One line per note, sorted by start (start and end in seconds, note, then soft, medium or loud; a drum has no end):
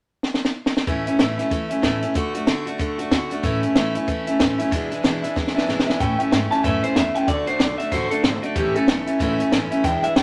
0.23 snare medium
0.34 snare medium
0.45 snare medium
0.66 snare medium
0.77 snare medium
0.87 1.06 A2 medium
0.87 1.07 E3 medium
0.87 1.07 A3 medium
0.87 1.07 C#4 medium
0.87 1.05 E4 medium
0.87 kick loud
0.87 closed hi-hat medium
1.06 1.19 A3 soft
1.06 1.19 C#4 medium
1.06 1.19 E4 medium
1.06 closed hi-hat medium
1.19 1.38 A2 medium
1.19 1.39 E3 medium
1.19 1.39 A3 medium
1.19 1.39 C#4 medium
1.19 1.36 E4 medium
1.19 snare loud
1.19 closed hi-hat medium
1.38 1.50 A3 medium
1.38 1.51 C#4 medium
1.38 1.51 E4 medium
1.38 snare soft
1.38 closed hi-hat medium
1.50 1.70 E3 medium
1.50 1.71 A3 medium
1.50 1.70 C#4 medium
1.50 1.68 E4 medium
1.50 kick loud
1.50 closed hi-hat medium
1.69 1.82 A3 medium
1.69 1.83 C#4 medium
1.69 1.83 E4 medium
1.69 closed hi-hat medium
1.82 2.02 A2 medium
1.82 2.03 E3 medium
1.82 2.03 A3 medium
1.82 2.02 C#4 medium
1.82 2.00 E4 medium
1.82 kick medium
1.82 snare loud
1.82 closed hi-hat medium
2.01 2.14 A3 medium
2.01 2.15 C#4 medium
2.01 2.15 E4 medium
2.01 closed hi-hat medium
2.14 2.34 D3 medium
2.14 2.35 A3 medium
2.14 2.34 D4 medium
2.14 2.33 F#4 medium
2.14 kick loud
2.14 closed hi-hat medium
2.34 2.47 A3 medium
2.34 2.47 D4 medium
2.34 2.47 F#4 medium
2.34 closed hi-hat medium
2.47 2.66 D3 medium
2.47 2.67 A3 medium
2.47 2.67 D4 medium
2.47 2.64 F#4 loud
2.47 snare loud
2.47 closed hi-hat medium
2.66 2.78 A3 medium
2.66 2.79 D4 medium
2.66 2.79 F#4 medium
2.66 closed hi-hat medium
2.78 2.98 D3 medium
2.78 2.99 A3 medium
2.78 2.99 D4 medium
2.78 2.97 F#4 medium
2.78 kick loud
2.78 closed hi-hat medium
2.98 3.11 A3 soft
2.98 3.12 D4 soft
2.98 3.11 F#4 medium
2.98 closed hi-hat medium
3.11 3.31 D3 medium
3.11 3.31 A3 medium
3.11 3.31 D4 medium
3.11 3.29 F#4 medium
3.11 kick medium
3.11 snare loud
3.11 closed hi-hat medium
3.30 3.43 A3 medium
3.30 3.44 D4 medium
3.30 3.43 F#4 medium
3.30 closed hi-hat medium
3.43 3.63 A2 medium
3.43 3.63 E3 medium
3.43 3.63 A3 medium
3.43 3.63 C#4 medium
3.43 3.61 E4 medium
3.43 kick loud
3.43 closed hi-hat medium
3.62 3.75 A3 medium
3.62 3.76 C#4 medium
3.62 3.75 E4 medium
3.62 closed hi-hat medium
3.75 3.95 A2 medium
3.75 3.95 E3 medium
3.75 3.95 A3 loud
3.75 3.95 C#4 medium
3.75 3.94 E4 loud
3.75 snare loud
3.75 closed hi-hat medium
3.95 4.07 A3 medium
3.95 4.08 C#4 medium
3.95 4.08 E4 medium
3.95 closed hi-hat medium
4.07 4.27 E3 medium
4.07 4.27 A3 medium
4.07 4.28 C#4 medium
4.07 4.25 E4 medium
4.07 kick loud
4.07 closed hi-hat medium
4.27 4.39 A3 soft
4.27 4.40 C#4 medium
4.27 4.39 E4 medium
4.27 closed hi-hat medium
4.39 4.59 A2 medium
4.39 4.59 E3 medium
4.39 4.60 A3 medium
4.39 4.59 C#4 medium
4.39 4.57 E4 medium
4.39 kick medium
4.39 snare loud
4.39 closed hi-hat medium
4.58 4.72 A3 medium
4.58 4.72 C#4 medium
4.58 4.71 E4 medium
4.58 closed hi-hat medium
4.71 4.91 E2 medium
4.71 4.91 B2 medium
4.71 4.91 E3 medium
4.71 4.91 G#3 medium
4.71 4.90 D4 loud
4.71 4.89 E4 medium
4.71 kick loud
4.71 closed hi-hat medium
4.90 5.03 E3 soft
4.90 5.03 G#3 medium
4.90 5.04 D4 medium
4.90 5.03 E4 medium
4.90 closed hi-hat medium
5.03 5.23 E2 medium
5.03 5.23 B2 medium
5.03 5.23 E3 medium
5.03 5.24 G#3 medium
5.03 5.22 D4 medium
5.03 5.21 E4 medium
5.03 snare loud
5.03 closed hi-hat medium
5.22 5.34 E3 soft
5.22 5.35 G#3 medium
5.22 5.36 D4 medium
5.22 5.35 E4 medium
5.22 snare soft
5.22 closed hi-hat medium
5.35 5.55 E3 medium
5.35 5.55 G#3 medium
5.35 5.55 D4 medium
5.35 5.53 E4 medium
5.35 kick loud
5.35 snare medium
5.47 snare medium
5.55 5.67 E3 medium
5.55 5.68 G#3 medium
5.55 5.68 D4 medium
5.55 5.68 E4 medium
5.55 snare medium
5.67 5.87 E2 medium
5.67 5.87 B2 medium
5.67 5.88 E3 medium
5.67 5.88 G#3 medium
5.67 5.87 D4 medium
5.67 5.85 E4 medium
5.67 snare medium
5.79 snare medium
5.86 5.99 E3 soft
5.86 6.00 G#3 medium
5.86 6.00 D4 medium
5.86 5.99 E4 medium
5.86 snare medium
5.99 6.19 A2 medium
5.99 6.19 E3 medium
5.99 6.20 A3 medium
5.99 6.20 C#4 medium
5.99 6.18 E4 medium
5.99 6.19 G5 medium
5.99 kick loud
5.99 closed hi-hat medium
6.19 6.31 A3 soft
6.19 6.32 C#4 medium
6.19 6.32 E4 medium
6.19 6.31 E5 medium
6.19 muted upright bass stroke medium
6.19 closed hi-hat medium
6.31 6.51 G#2 medium
6.31 6.51 E3 medium
6.31 6.52 A3 medium
6.31 6.51 C#4 medium
6.31 6.49 E4 medium
6.31 6.50 G5 medium
6.31 snare loud
6.31 closed hi-hat medium
6.50 6.64 A3 soft
6.50 6.64 C#4 medium
6.50 6.63 E4 medium
6.50 6.63 A5 loud
6.50 muted upright bass stroke medium
6.50 snare soft
6.50 closed hi-hat medium
6.63 6.83 F#2 medium
6.63 6.83 A2 medium
6.63 6.83 E3 medium
6.63 6.84 A3 medium
6.63 6.83 C#4 medium
6.63 6.81 E4 loud
6.63 6.83 E5 medium
6.63 kick loud
6.63 closed hi-hat medium
6.82 6.95 A3 soft
6.82 6.96 C#4 medium
6.82 6.96 E4 medium
6.82 6.96 C5 medium
6.82 closed hi-hat medium
6.95 7.15 E2 loud
6.95 7.15 E3 medium
6.95 7.15 A3 medium
6.95 7.15 C#4 medium
6.95 7.13 E4 medium
6.95 7.15 E5 medium
6.95 snare loud
6.95 closed hi-hat medium
7.15 7.27 A3 soft
7.15 7.28 C#4 medium
7.15 7.28 E4 medium
7.15 7.27 G5 medium
7.15 muted upright bass stroke medium
7.15 closed hi-hat medium
7.27 7.47 D2 medium
7.27 7.47 D3 medium
7.27 7.47 A3 medium
7.27 7.48 D4 medium
7.27 7.45 F#4 medium
7.27 7.47 D5 medium
7.27 kick loud
7.27 closed hi-hat medium
7.46 7.59 A3 soft
7.46 7.60 D4 soft
7.46 7.60 F#4 medium
7.46 7.60 C5 medium
7.46 muted upright bass stroke medium
7.46 closed hi-hat medium
7.59 7.79 B1 medium
7.59 7.79 D3 medium
7.59 7.80 A3 medium
7.59 7.79 D4 medium
7.59 7.77 F#4 medium
7.59 7.78 D5 medium
7.59 snare loud
7.59 closed hi-hat medium
7.78 7.91 A3 soft
7.78 7.92 D4 soft
7.78 7.92 F#4 medium
7.78 7.91 E5 loud
7.78 muted upright bass stroke medium
7.78 closed hi-hat medium
7.91 8.11 A1 medium
7.91 8.11 D3 medium
7.91 8.11 A3 medium
7.91 8.11 D4 medium
7.91 8.09 F#4 loud
7.91 8.10 C5 medium
7.91 kick medium
7.91 closed hi-hat medium
8.10 8.23 A3 medium
8.10 8.24 D4 medium
8.10 8.23 F#4 medium
8.10 8.23 A4 medium
8.10 muted upright bass stroke medium
8.10 closed hi-hat medium
8.23 8.42 G#1 loud
8.23 8.43 D3 medium
8.23 8.43 A3 medium
8.23 8.43 D4 medium
8.23 8.41 F#4 medium
8.23 8.43 C5 medium
8.23 snare loud
8.23 closed hi-hat medium
8.42 8.55 A3 medium
8.42 8.56 D4 medium
8.42 8.55 F#4 medium
8.42 8.55 D5 medium
8.42 closed hi-hat medium
8.55 8.74 A1 medium
8.55 8.75 A2 medium
8.55 8.75 E3 medium
8.55 8.76 A3 medium
8.55 8.75 C#4 medium
8.55 8.73 E4 medium
8.55 8.75 G4 medium
8.55 kick loud
8.55 closed hi-hat medium
8.74 8.87 A3 medium
8.74 8.88 C#4 medium
8.74 8.87 E4 medium
8.74 9.34 A4 medium
8.74 muted upright bass stroke medium
8.74 closed hi-hat medium
8.87 9.07 B1 loud
8.87 9.07 E3 medium
8.87 9.07 A3 medium
8.87 9.07 C#4 medium
8.87 snare loud
8.87 closed hi-hat medium
9.06 9.19 A3 soft
9.06 9.20 C#4 medium
9.06 9.19 E4 medium
9.06 muted upright bass stroke medium
9.06 closed hi-hat medium
9.19 9.39 C#2 medium
9.19 9.39 A2 loud
9.19 9.39 E3 loud
9.19 9.40 A3 loud
9.19 9.39 C#4 loud
9.19 9.37 E4 loud
9.19 kick loud
9.19 closed hi-hat medium
9.38 9.51 A3 medium
9.38 9.52 C#4 medium
9.38 9.51 E4 medium
9.38 muted upright bass stroke medium
9.38 closed hi-hat medium
9.51 9.71 A1 medium
9.51 9.71 E3 medium
9.51 9.72 A3 medium
9.51 9.71 C#4 medium
9.51 9.70 E4 medium
9.51 snare loud
9.51 closed hi-hat medium
9.71 9.84 A3 medium
9.71 9.85 C#4 medium
9.71 9.84 E4 medium
9.71 muted upright bass stroke medium
9.71 closed hi-hat medium
9.83 10.03 E2 medium
9.83 10.03 B2 medium
9.83 10.04 E3 medium
9.83 10.04 G#3 medium
9.83 10.03 D4 medium
9.83 10.01 E4 medium
9.83 10.03 G5 medium
9.83 kick loud
9.83 closed hi-hat loud
10.03 10.14 E3 soft
10.03 10.15 G#3 medium
10.03 10.16 D4 soft
10.03 10.16 E4 medium
10.03 10.16 E5 medium
10.03 muted upright bass stroke medium
10.03 closed hi-hat medium
10.15 10.23 C#2 loud
10.15 10.23 E3 medium
10.15 10.23 G#3 medium
10.15 10.23 D4 medium
10.15 10.23 E4 medium
10.15 10.23 G5 medium
10.15 snare loud
10.15 closed hi-hat medium